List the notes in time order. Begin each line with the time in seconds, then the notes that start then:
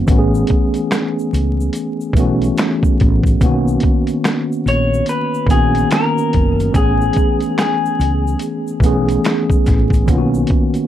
0.07 A1 E3 A3 B3, kick, closed hi-hat, shaker
0.11 C#4 F#4
0.19 G#4
0.35 shaker
0.47 kick, closed hi-hat
0.74 closed hi-hat, shaker
0.91 finger snap, snare, closed hi-hat, shaker
1.19 shaker
1.33 C#2, closed hi-hat, shaker
1.61 shaker
1.73 closed hi-hat, shaker
2.01 shaker
2.13 B1 E3 A3 B3, kick, closed hi-hat, shaker
2.19 C#4 F#4
2.42 closed hi-hat, shaker
2.58 finger snap, snare, closed hi-hat, shaker
2.83 kick, shaker
3.00 A1, kick, closed hi-hat
3.23 kick, closed hi-hat, shaker
3.40 B1 D3 A#3 B3, kick, closed hi-hat, shaker
3.45 D#3 C#4 F#4
3.68 shaker
3.80 kick, closed hi-hat
4.07 closed hi-hat, shaker
4.24 finger snap, snare, closed hi-hat, shaker
4.52 shaker
4.66 A#1 C#5, closed hi-hat, shaker
4.94 shaker
5.06 B4, closed hi-hat, shaker
5.34 shaker
5.47 A#1 D#3 A#3 B3, kick, closed hi-hat, shaker
5.51 C#4 F#4 G#4
5.75 closed hi-hat, shaker
5.91 A#4, finger snap, snare, closed hi-hat, shaker
6.18 shaker
6.33 F#1, kick, closed hi-hat
6.60 closed hi-hat, shaker
6.72 A1 E3 A3 B3 G#4, kick, closed hi-hat, shaker
6.77 C#4 G#4
7.01 shaker
7.13 kick, closed hi-hat, shaker
7.40 closed hi-hat, shaker
7.58 G#4, finger snap, snare, closed hi-hat, shaker
7.86 shaker
7.99 C#2, closed hi-hat, shaker
8.27 shaker
8.39 closed hi-hat, shaker
8.67 shaker
8.80 B1 E3 A3 B3, kick, closed hi-hat, shaker
8.85 C#4 G#4
9.08 closed hi-hat, shaker
9.24 finger snap, snare, closed hi-hat, shaker
9.50 kick, shaker
9.66 A1, kick, snare, closed hi-hat, shaker
9.90 kick, closed hi-hat, shaker
10.06 B1 D#3 A#3 B3, kick, closed hi-hat, shaker
10.10 C#4 F4
10.18 F#4
10.34 shaker
10.47 kick, closed hi-hat
10.74 closed hi-hat, shaker